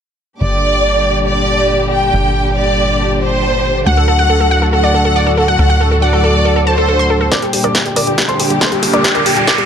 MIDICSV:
0, 0, Header, 1, 8, 480
1, 0, Start_track
1, 0, Key_signature, -2, "minor"
1, 0, Tempo, 431655
1, 456, Time_signature, 4, 2, 24, 8
1, 10736, End_track
2, 0, Start_track
2, 0, Title_t, "Grand piano"
2, 0, Program_c, 0, 0
2, 8134, Note_on_c, 0, 86, 89
2, 8228, Note_off_c, 0, 86, 0
2, 8255, Note_on_c, 0, 79, 60
2, 8349, Note_off_c, 0, 79, 0
2, 8374, Note_on_c, 0, 79, 61
2, 8468, Note_off_c, 0, 79, 0
2, 8494, Note_on_c, 0, 86, 84
2, 8589, Note_off_c, 0, 86, 0
2, 8615, Note_on_c, 0, 79, 59
2, 8709, Note_off_c, 0, 79, 0
2, 8735, Note_on_c, 0, 79, 61
2, 8829, Note_off_c, 0, 79, 0
2, 8853, Note_on_c, 0, 86, 82
2, 8948, Note_off_c, 0, 86, 0
2, 8974, Note_on_c, 0, 79, 62
2, 9068, Note_off_c, 0, 79, 0
2, 9095, Note_on_c, 0, 79, 62
2, 9189, Note_off_c, 0, 79, 0
2, 9213, Note_on_c, 0, 84, 87
2, 9308, Note_off_c, 0, 84, 0
2, 9334, Note_on_c, 0, 79, 58
2, 9428, Note_off_c, 0, 79, 0
2, 9453, Note_on_c, 0, 79, 60
2, 9548, Note_off_c, 0, 79, 0
2, 9576, Note_on_c, 0, 84, 92
2, 9669, Note_off_c, 0, 84, 0
2, 9696, Note_on_c, 0, 79, 58
2, 9789, Note_off_c, 0, 79, 0
2, 9817, Note_on_c, 0, 79, 63
2, 9910, Note_off_c, 0, 79, 0
2, 9937, Note_on_c, 0, 86, 82
2, 10030, Note_off_c, 0, 86, 0
2, 10057, Note_on_c, 0, 79, 62
2, 10150, Note_off_c, 0, 79, 0
2, 10176, Note_on_c, 0, 86, 87
2, 10270, Note_off_c, 0, 86, 0
2, 10297, Note_on_c, 0, 79, 62
2, 10390, Note_off_c, 0, 79, 0
2, 10417, Note_on_c, 0, 79, 57
2, 10510, Note_off_c, 0, 79, 0
2, 10537, Note_on_c, 0, 86, 90
2, 10630, Note_off_c, 0, 86, 0
2, 10656, Note_on_c, 0, 79, 61
2, 10736, Note_off_c, 0, 79, 0
2, 10736, End_track
3, 0, Start_track
3, 0, Title_t, "Violin section"
3, 0, Program_c, 1, 48
3, 455, Note_on_c, 1, 74, 91
3, 1320, Note_off_c, 1, 74, 0
3, 1415, Note_on_c, 1, 74, 88
3, 2040, Note_off_c, 1, 74, 0
3, 2135, Note_on_c, 1, 79, 82
3, 2760, Note_off_c, 1, 79, 0
3, 2856, Note_on_c, 1, 74, 85
3, 3480, Note_off_c, 1, 74, 0
3, 3576, Note_on_c, 1, 72, 89
3, 4200, Note_off_c, 1, 72, 0
3, 4297, Note_on_c, 1, 78, 98
3, 5161, Note_off_c, 1, 78, 0
3, 5255, Note_on_c, 1, 78, 89
3, 5880, Note_off_c, 1, 78, 0
3, 5976, Note_on_c, 1, 78, 89
3, 6600, Note_off_c, 1, 78, 0
3, 6696, Note_on_c, 1, 74, 89
3, 7320, Note_off_c, 1, 74, 0
3, 7416, Note_on_c, 1, 72, 91
3, 8040, Note_off_c, 1, 72, 0
3, 10736, End_track
4, 0, Start_track
4, 0, Title_t, "Synth pluck"
4, 0, Program_c, 2, 84
4, 4297, Note_on_c, 2, 78, 93
4, 4390, Note_off_c, 2, 78, 0
4, 4418, Note_on_c, 2, 69, 60
4, 4510, Note_off_c, 2, 69, 0
4, 4536, Note_on_c, 2, 69, 58
4, 4630, Note_off_c, 2, 69, 0
4, 4658, Note_on_c, 2, 78, 88
4, 4751, Note_off_c, 2, 78, 0
4, 4776, Note_on_c, 2, 69, 59
4, 4870, Note_off_c, 2, 69, 0
4, 4898, Note_on_c, 2, 69, 60
4, 4990, Note_off_c, 2, 69, 0
4, 5017, Note_on_c, 2, 78, 91
4, 5110, Note_off_c, 2, 78, 0
4, 5137, Note_on_c, 2, 69, 60
4, 5230, Note_off_c, 2, 69, 0
4, 5258, Note_on_c, 2, 69, 60
4, 5350, Note_off_c, 2, 69, 0
4, 5376, Note_on_c, 2, 74, 84
4, 5469, Note_off_c, 2, 74, 0
4, 5496, Note_on_c, 2, 69, 60
4, 5589, Note_off_c, 2, 69, 0
4, 5615, Note_on_c, 2, 69, 63
4, 5709, Note_off_c, 2, 69, 0
4, 5736, Note_on_c, 2, 74, 88
4, 5829, Note_off_c, 2, 74, 0
4, 5855, Note_on_c, 2, 69, 63
4, 5949, Note_off_c, 2, 69, 0
4, 5976, Note_on_c, 2, 69, 60
4, 6069, Note_off_c, 2, 69, 0
4, 6095, Note_on_c, 2, 78, 83
4, 6189, Note_off_c, 2, 78, 0
4, 6215, Note_on_c, 2, 69, 60
4, 6309, Note_off_c, 2, 69, 0
4, 6334, Note_on_c, 2, 78, 89
4, 6428, Note_off_c, 2, 78, 0
4, 6457, Note_on_c, 2, 69, 61
4, 6550, Note_off_c, 2, 69, 0
4, 6576, Note_on_c, 2, 69, 59
4, 6670, Note_off_c, 2, 69, 0
4, 6696, Note_on_c, 2, 78, 87
4, 6790, Note_off_c, 2, 78, 0
4, 6816, Note_on_c, 2, 69, 62
4, 6910, Note_off_c, 2, 69, 0
4, 6936, Note_on_c, 2, 69, 62
4, 7029, Note_off_c, 2, 69, 0
4, 7175, Note_on_c, 2, 69, 60
4, 7269, Note_off_c, 2, 69, 0
4, 7296, Note_on_c, 2, 69, 57
4, 7389, Note_off_c, 2, 69, 0
4, 7414, Note_on_c, 2, 81, 85
4, 7509, Note_off_c, 2, 81, 0
4, 7536, Note_on_c, 2, 69, 63
4, 7629, Note_off_c, 2, 69, 0
4, 7656, Note_on_c, 2, 69, 58
4, 7749, Note_off_c, 2, 69, 0
4, 7776, Note_on_c, 2, 84, 96
4, 7869, Note_off_c, 2, 84, 0
4, 7895, Note_on_c, 2, 69, 60
4, 7989, Note_off_c, 2, 69, 0
4, 8015, Note_on_c, 2, 69, 60
4, 8109, Note_off_c, 2, 69, 0
4, 8136, Note_on_c, 2, 70, 70
4, 8136, Note_on_c, 2, 74, 95
4, 8229, Note_off_c, 2, 70, 0
4, 8230, Note_off_c, 2, 74, 0
4, 8257, Note_on_c, 2, 67, 62
4, 8350, Note_off_c, 2, 67, 0
4, 8377, Note_on_c, 2, 67, 63
4, 8470, Note_off_c, 2, 67, 0
4, 8496, Note_on_c, 2, 74, 90
4, 8497, Note_on_c, 2, 70, 72
4, 8590, Note_off_c, 2, 70, 0
4, 8590, Note_off_c, 2, 74, 0
4, 8616, Note_on_c, 2, 67, 62
4, 8709, Note_off_c, 2, 67, 0
4, 8737, Note_on_c, 2, 67, 59
4, 8830, Note_off_c, 2, 67, 0
4, 8856, Note_on_c, 2, 70, 74
4, 8856, Note_on_c, 2, 74, 92
4, 8949, Note_off_c, 2, 70, 0
4, 8949, Note_off_c, 2, 74, 0
4, 8976, Note_on_c, 2, 67, 63
4, 9069, Note_off_c, 2, 67, 0
4, 9097, Note_on_c, 2, 67, 63
4, 9190, Note_off_c, 2, 67, 0
4, 9215, Note_on_c, 2, 69, 75
4, 9216, Note_on_c, 2, 72, 88
4, 9309, Note_off_c, 2, 69, 0
4, 9309, Note_off_c, 2, 72, 0
4, 9338, Note_on_c, 2, 67, 62
4, 9430, Note_off_c, 2, 67, 0
4, 9455, Note_on_c, 2, 67, 66
4, 9549, Note_off_c, 2, 67, 0
4, 9576, Note_on_c, 2, 69, 74
4, 9576, Note_on_c, 2, 72, 90
4, 9669, Note_off_c, 2, 69, 0
4, 9669, Note_off_c, 2, 72, 0
4, 9695, Note_on_c, 2, 67, 62
4, 9789, Note_off_c, 2, 67, 0
4, 9815, Note_on_c, 2, 67, 59
4, 9909, Note_off_c, 2, 67, 0
4, 9935, Note_on_c, 2, 70, 74
4, 9935, Note_on_c, 2, 74, 84
4, 10029, Note_off_c, 2, 70, 0
4, 10029, Note_off_c, 2, 74, 0
4, 10054, Note_on_c, 2, 67, 64
4, 10149, Note_off_c, 2, 67, 0
4, 10174, Note_on_c, 2, 70, 75
4, 10174, Note_on_c, 2, 74, 90
4, 10268, Note_off_c, 2, 70, 0
4, 10269, Note_off_c, 2, 74, 0
4, 10294, Note_on_c, 2, 67, 62
4, 10389, Note_off_c, 2, 67, 0
4, 10414, Note_on_c, 2, 67, 64
4, 10509, Note_off_c, 2, 67, 0
4, 10534, Note_on_c, 2, 70, 75
4, 10535, Note_on_c, 2, 74, 88
4, 10629, Note_off_c, 2, 70, 0
4, 10629, Note_off_c, 2, 74, 0
4, 10656, Note_on_c, 2, 67, 62
4, 10736, Note_off_c, 2, 67, 0
4, 10736, End_track
5, 0, Start_track
5, 0, Title_t, "String section"
5, 0, Program_c, 3, 48
5, 455, Note_on_c, 3, 46, 70
5, 455, Note_on_c, 3, 50, 61
5, 455, Note_on_c, 3, 62, 61
5, 456, Note_on_c, 3, 55, 64
5, 456, Note_on_c, 3, 67, 77
5, 4257, Note_off_c, 3, 46, 0
5, 4258, Note_off_c, 3, 55, 0
5, 4258, Note_off_c, 3, 67, 0
5, 4296, Note_on_c, 3, 45, 73
5, 4296, Note_on_c, 3, 54, 66
5, 4296, Note_on_c, 3, 66, 75
5, 8091, Note_off_c, 3, 50, 0
5, 8091, Note_off_c, 3, 62, 0
5, 8098, Note_off_c, 3, 45, 0
5, 8098, Note_off_c, 3, 54, 0
5, 8098, Note_off_c, 3, 66, 0
5, 8136, Note_on_c, 3, 50, 64
5, 8136, Note_on_c, 3, 55, 68
5, 8136, Note_on_c, 3, 67, 80
5, 10736, Note_off_c, 3, 50, 0
5, 10736, Note_off_c, 3, 55, 0
5, 10736, Note_off_c, 3, 67, 0
5, 10736, End_track
6, 0, Start_track
6, 0, Title_t, "Analog synth bass"
6, 0, Program_c, 4, 38
6, 456, Note_on_c, 4, 31, 85
6, 2352, Note_off_c, 4, 31, 0
6, 2376, Note_on_c, 4, 31, 87
6, 4272, Note_off_c, 4, 31, 0
6, 4296, Note_on_c, 4, 38, 85
6, 6192, Note_off_c, 4, 38, 0
6, 6216, Note_on_c, 4, 38, 88
6, 8112, Note_off_c, 4, 38, 0
6, 10736, End_track
7, 0, Start_track
7, 0, Title_t, "Riser"
7, 0, Program_c, 5, 103
7, 8136, Note_on_c, 5, 60, 73
7, 10736, Note_off_c, 5, 60, 0
7, 10736, End_track
8, 0, Start_track
8, 0, Title_t, "Drums"
8, 8135, Note_on_c, 9, 36, 113
8, 8135, Note_on_c, 9, 38, 43
8, 8135, Note_on_c, 9, 42, 63
8, 8246, Note_off_c, 9, 38, 0
8, 8246, Note_off_c, 9, 42, 0
8, 8247, Note_off_c, 9, 36, 0
8, 8255, Note_on_c, 9, 42, 38
8, 8367, Note_off_c, 9, 42, 0
8, 8375, Note_on_c, 9, 46, 99
8, 8486, Note_off_c, 9, 46, 0
8, 8495, Note_on_c, 9, 42, 38
8, 8606, Note_off_c, 9, 42, 0
8, 8615, Note_on_c, 9, 38, 47
8, 8615, Note_on_c, 9, 42, 64
8, 8616, Note_on_c, 9, 36, 114
8, 8727, Note_off_c, 9, 36, 0
8, 8727, Note_off_c, 9, 38, 0
8, 8727, Note_off_c, 9, 42, 0
8, 8736, Note_on_c, 9, 42, 37
8, 8847, Note_off_c, 9, 42, 0
8, 8855, Note_on_c, 9, 46, 102
8, 8967, Note_off_c, 9, 46, 0
8, 8976, Note_on_c, 9, 42, 38
8, 9087, Note_off_c, 9, 42, 0
8, 9095, Note_on_c, 9, 36, 106
8, 9095, Note_on_c, 9, 38, 49
8, 9095, Note_on_c, 9, 42, 63
8, 9207, Note_off_c, 9, 36, 0
8, 9207, Note_off_c, 9, 38, 0
8, 9207, Note_off_c, 9, 42, 0
8, 9216, Note_on_c, 9, 42, 40
8, 9327, Note_off_c, 9, 42, 0
8, 9336, Note_on_c, 9, 46, 95
8, 9447, Note_off_c, 9, 46, 0
8, 9456, Note_on_c, 9, 42, 39
8, 9567, Note_off_c, 9, 42, 0
8, 9575, Note_on_c, 9, 36, 109
8, 9576, Note_on_c, 9, 38, 54
8, 9576, Note_on_c, 9, 42, 64
8, 9687, Note_off_c, 9, 36, 0
8, 9688, Note_off_c, 9, 38, 0
8, 9688, Note_off_c, 9, 42, 0
8, 9696, Note_on_c, 9, 42, 39
8, 9807, Note_off_c, 9, 42, 0
8, 9816, Note_on_c, 9, 46, 102
8, 9927, Note_off_c, 9, 46, 0
8, 9935, Note_on_c, 9, 42, 39
8, 10047, Note_off_c, 9, 42, 0
8, 10056, Note_on_c, 9, 36, 124
8, 10056, Note_on_c, 9, 38, 55
8, 10056, Note_on_c, 9, 42, 63
8, 10167, Note_off_c, 9, 36, 0
8, 10167, Note_off_c, 9, 38, 0
8, 10167, Note_off_c, 9, 42, 0
8, 10176, Note_on_c, 9, 42, 37
8, 10287, Note_off_c, 9, 42, 0
8, 10296, Note_on_c, 9, 46, 103
8, 10407, Note_off_c, 9, 46, 0
8, 10416, Note_on_c, 9, 42, 39
8, 10527, Note_off_c, 9, 42, 0
8, 10535, Note_on_c, 9, 38, 58
8, 10535, Note_on_c, 9, 42, 60
8, 10536, Note_on_c, 9, 36, 118
8, 10647, Note_off_c, 9, 36, 0
8, 10647, Note_off_c, 9, 38, 0
8, 10647, Note_off_c, 9, 42, 0
8, 10656, Note_on_c, 9, 42, 35
8, 10736, Note_off_c, 9, 42, 0
8, 10736, End_track
0, 0, End_of_file